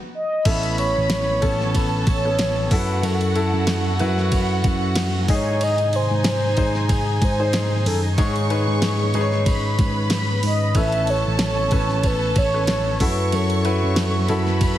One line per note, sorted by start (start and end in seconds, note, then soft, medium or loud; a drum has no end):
0.14 0.48 D#5 loud
0.45 0.92 A1 loud
0.45 1.38 A2 medium
0.45 2.69 A3 medium
0.45 1.33 B3 medium
0.45 2.69 B3 medium
0.45 1.33 C#4 medium
0.45 2.69 C#4 medium
0.45 1.33 A4 medium
0.45 1.40 B4 medium
0.45 0.78 E5 loud
0.45 1.40 B5 medium
0.45 kick loud
0.45 crash medium
0.45 ride medium
0.63 ride soft
0.78 1.08 C#5 medium
0.78 ride medium
0.96 1.39 A1 medium
1.10 1.78 C#5 loud
1.10 snare loud
1.10 ride medium
1.42 2.03 A1 loud
1.42 2.15 B3 medium
1.42 2.15 C#4 medium
1.42 2.68 A4 medium
1.42 2.15 A4 medium
1.42 2.68 A5 medium
1.42 kick medium
1.42 ride medium
1.61 snare soft
1.75 2.10 B4 loud
1.75 kick medium
1.75 ride medium
2.07 2.67 A1 medium
2.07 2.72 C#5 loud
2.07 kick loud
2.07 ride medium
2.25 2.71 B3 medium
2.25 2.71 C#4 medium
2.25 2.70 A4 medium
2.39 snare loud
2.39 ride medium
2.71 3.01 F#2 loud
2.71 5.26 F#3 medium
2.71 3.29 E4 medium
2.71 5.26 E4 medium
2.71 5.24 F#4 medium
2.71 3.30 F#4 medium
2.71 5.26 A4 medium
2.71 3.30 A4 medium
2.71 3.06 B4 medium
2.71 5.24 F#5 medium
2.71 kick loud
2.71 open hi-hat medium
2.71 ride medium
3.03 3.50 F#2 loud
3.03 4.33 A4 loud
3.03 ride medium
3.21 ride soft
3.36 3.94 E4 medium
3.36 3.94 F#4 medium
3.36 3.94 A4 medium
3.36 ride medium
3.53 3.96 F#2 medium
3.67 snare loud
3.67 ride medium
3.99 4.60 F#2 loud
3.99 5.16 E4 medium
3.99 5.16 F#4 medium
3.99 5.16 B4 medium
3.99 ride medium
4.18 snare soft
4.32 kick medium
4.32 ride medium
4.64 5.25 F#2 loud
4.64 kick loud
4.64 ride medium
4.96 snare loud
4.96 ride medium
5.28 6.07 G#2 loud
5.28 6.22 G#2 medium
5.28 8.15 C3 medium
5.28 10.71 D#3 medium
5.28 10.71 D#4 medium
5.28 8.14 D#4 medium
5.28 6.45 D#4 medium
5.28 6.46 G#4 medium
5.28 5.65 C#5 loud
5.28 6.46 D#5 medium
5.28 8.14 G#5 medium
5.28 kick loud
5.28 open hi-hat medium
5.28 ride medium
5.61 5.97 D#5 loud
5.61 ride medium
5.78 ride soft
5.93 6.26 C5 loud
5.93 ride medium
6.11 6.54 G#2 medium
6.24 6.94 C5 loud
6.24 snare loud
6.24 ride medium
6.57 7.18 G#2 medium
6.57 7.30 D#4 medium
6.57 7.30 G#4 medium
6.57 7.30 C5 medium
6.57 kick medium
6.57 ride medium
6.75 snare soft
6.89 7.25 G#4 loud
6.89 kick medium
6.89 ride medium
7.22 7.82 G#2 medium
7.22 7.86 C5 loud
7.22 kick loud
7.22 ride medium
7.40 8.10 D#4 medium
7.40 8.10 G#4 medium
7.40 8.11 C5 medium
7.53 snare loud
7.53 ride medium
7.85 8.15 F#2 medium
7.85 8.01 A4 medium
7.85 open hi-hat medium
7.85 ride medium
8.18 9.10 G#2 medium
8.18 8.65 G#2 loud
8.18 10.73 C#4 medium
8.18 8.47 D#4 medium
8.18 8.47 G#4 medium
8.18 9.43 G#4 loud
8.18 9.44 C#5 medium
8.18 8.47 C#5 medium
8.18 9.44 C#6 medium
8.18 kick loud
8.18 ride medium
8.36 ride soft
8.50 9.08 D#4 medium
8.50 9.08 G#4 medium
8.50 9.08 B4 medium
8.50 ride medium
8.67 9.11 G#2 medium
8.82 snare loud
8.82 ride medium
9.14 9.75 G#2 loud
9.14 10.31 D#4 medium
9.14 10.31 G#4 medium
9.14 9.22 B4 medium
9.14 ride medium
9.21 10.34 C#5 loud
9.32 snare soft
9.46 10.72 B4 medium
9.46 10.72 B5 medium
9.46 kick medium
9.46 ride medium
9.79 10.39 G#2 medium
9.79 kick loud
9.79 ride medium
10.10 snare loud
10.10 ride medium
10.43 10.73 G#2 medium
10.43 10.78 D#5 loud
10.43 open hi-hat medium
10.43 ride medium
10.74 11.22 A1 loud
10.74 11.68 A2 medium
10.74 12.98 A3 medium
10.74 12.98 B3 medium
10.74 12.98 C#4 medium
10.74 11.62 C#4 medium
10.74 12.96 A4 medium
10.74 11.62 A4 medium
10.74 11.63 B4 medium
10.74 11.11 E5 loud
10.74 12.96 A5 loud
10.74 kick medium
10.74 ride medium
10.92 ride soft
11.07 11.41 C#5 loud
11.07 ride medium
11.25 11.68 A1 medium
11.39 12.08 C#5 loud
11.39 snare loud
11.39 ride medium
11.71 12.32 A1 loud
11.71 12.44 C#4 medium
11.71 12.44 A4 medium
11.71 12.45 B4 medium
11.71 kick medium
11.71 ride medium
11.89 snare soft
12.03 12.37 B4 loud
12.03 kick medium
12.03 ride medium
12.36 12.96 A1 loud
12.36 13.04 C#5 loud
12.36 kick loud
12.36 ride medium
12.54 13.00 C#4 medium
12.54 12.99 A4 medium
12.54 13.00 B4 medium
12.67 snare loud
12.67 ride medium
13.00 13.30 F#2 medium
13.00 14.78 F#3 medium
13.00 14.78 E4 medium
13.00 13.59 E4 medium
13.00 13.59 F#4 medium
13.00 14.78 A4 medium
13.00 13.59 A4 medium
13.00 13.36 B4 medium
13.00 14.27 C#5 medium
13.00 14.27 C#6 medium
13.00 kick loud
13.00 open hi-hat medium
13.00 ride medium
13.32 13.79 F#2 loud
13.32 14.62 A4 loud
13.32 ride medium
13.50 ride soft
13.65 14.23 E4 medium
13.65 14.23 F#4 medium
13.65 14.23 B4 medium
13.65 ride medium
13.83 14.26 F#2 medium
13.96 snare loud
13.96 ride medium
14.29 14.78 F#2 loud
14.29 14.78 E4 medium
14.29 14.78 F#4 medium
14.29 14.78 A4 medium
14.29 14.78 B4 medium
14.29 14.78 B5 medium
14.29 ride medium
14.47 snare soft
14.61 kick medium
14.61 ride medium